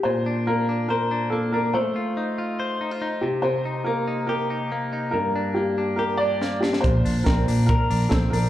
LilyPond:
<<
  \new Staff \with { instrumentName = "Upright piano" } { \time 4/4 \key bes \major \tempo 4 = 141 c''4 bes'4 bes'4 a'8 bes'8 | c''2 r4. g'8 | c''4 bes'4 bes'2 | bes'4 g'4 bes'8 d''4 g'8 |
c''4 bes'4 bes'4 a'8 bes'8 | }
  \new Staff \with { instrumentName = "Clean electric guitar" } { \time 4/4 \key bes \major bes,8 d'8 bes8 d'8 c''8 d'8 bes8 d'8 | a8 f'8 ees'8 f'8 c''8 ees'16 f'16 ees'8 c8 | c8 ees'8 bes8 ees'8 g'8 ees'8 bes8 ees'8 | g,8 d'8 bes8 d'8 g'8 d'8 bes8 d'8 |
bes,8 d'8 c'8 d'8 bes'8 d'8 c'8 d'8 | }
  \new Staff \with { instrumentName = "Fingered electric bass" } { \clef bass \time 4/4 \key bes \major r1 | r1 | r1 | r1 |
bes,,8 bes,,8 bes,,8 bes,8. r16 bes,,8 bes,,8 bes,,8 | }
  \new DrumStaff \with { instrumentName = "Drums" } \drummode { \time 4/4 r4 r4 r4 r4 | r4 r4 r4 r4 | r4 r4 r4 r4 | r4 r4 r4 sn8 sn16 sn16 |
<hh bd>8 hho8 <hh bd sn>8 hho8 <hh bd>8 hho8 <hh bd sn>8 hho8 | }
>>